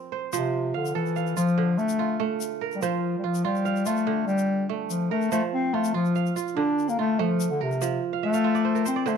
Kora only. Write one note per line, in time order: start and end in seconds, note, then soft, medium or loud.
0.00 0.32 F3 medium
0.00 1.50 C4 medium
0.00 0.38 F4 medium
0.00 0.77 A#4 medium
0.00 0.12 C5 medium
0.12 0.32 C5 medium
0.33 1.62 F3 medium
0.33 1.52 C5 medium
0.74 1.16 F5 medium
0.95 2.27 A4 medium
1.16 2.16 F5 medium
1.37 1.99 F4 medium
1.58 2.87 D3 medium
1.99 3.23 F4 medium
2.20 2.67 A3 medium
2.61 3.89 A#4 medium
2.82 4.12 F3 medium
2.82 4.01 C5 medium
3.24 3.44 F4 medium
3.45 3.86 F4 medium
3.65 4.65 F5 medium
3.86 5.38 F4 medium
4.07 5.37 D3 medium
4.69 5.17 A3 medium
5.11 6.38 A#4 medium
5.32 6.62 F3 medium
5.32 6.51 C5 medium
5.74 5.94 F4 medium
5.94 6.36 F4 medium
6.16 7.15 F5 medium
6.36 6.98 F4 medium
6.57 7.87 D3 medium
6.99 8.29 F4 medium
7.19 7.67 A3 medium
7.61 8.75 A#4 medium
7.81 9.11 F3 medium
8.13 8.33 F5 medium
8.23 8.44 E5 medium
8.34 9.17 F5 medium
8.44 9.17 F4 medium
8.44 9.17 E5 medium
8.55 8.96 D5 medium
8.65 8.85 C5 medium
8.75 9.16 A#4 medium
8.85 9.06 C5 medium
8.96 9.17 D5 medium
9.06 9.17 D3 medium
9.06 9.17 C5 medium